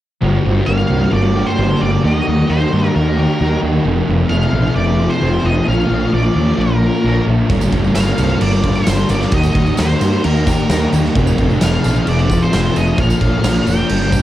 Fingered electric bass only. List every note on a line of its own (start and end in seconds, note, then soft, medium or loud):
0.22 0.37 G1 medium
0.45 0.60 G1 medium
0.68 0.83 G1 medium
0.89 1.05 C2 medium
1.12 1.43 G1 medium
1.59 1.74 G1 medium
1.81 1.96 G1 medium
2.04 2.19 D#2 loud
2.28 2.42 D#2 loud
2.49 2.64 D#2 medium
2.73 2.88 G2 medium
2.96 3.25 D#2 medium
3.41 3.56 D#2 medium
3.63 3.78 D#2 medium
3.85 4.00 F1 loud
4.08 4.23 F1 medium
4.30 4.46 F1 medium
4.53 4.68 A#1 medium
4.75 5.06 F1 medium
5.22 5.37 F1 medium
5.44 5.60 F1 medium
5.68 5.83 A#1 loud
5.90 6.05 A#1 medium
6.13 6.28 A#1 loud
6.35 6.51 D#2 medium
6.58 6.89 A#1 medium
7.04 7.19 A#1 medium
7.27 7.42 A#1 medium
7.50 7.65 G1 loud
7.73 7.88 G1 medium
7.96 8.11 G1 loud
8.18 8.33 C2 medium
8.41 8.72 G1 medium
8.87 9.02 G1 medium
9.10 9.25 G1 medium
9.32 9.48 D#2 medium
9.55 9.70 D#2 medium
9.79 9.94 D#2 medium
10.01 10.16 G2 medium
10.25 10.55 D#2 medium
10.70 10.85 D#2 medium
10.93 11.08 D#2 loud
11.16 11.31 F1 loud
11.38 11.53 F1 medium
11.61 11.76 F1 loud
11.85 12.00 A#1 medium
12.07 12.37 F1 medium
12.53 12.68 F1 medium
12.76 12.91 F1 medium
12.98 13.14 A#1 medium
13.21 13.36 A#1 loud
13.44 13.59 A#1 medium
13.66 13.82 F1 medium
13.90 14.20 G1 medium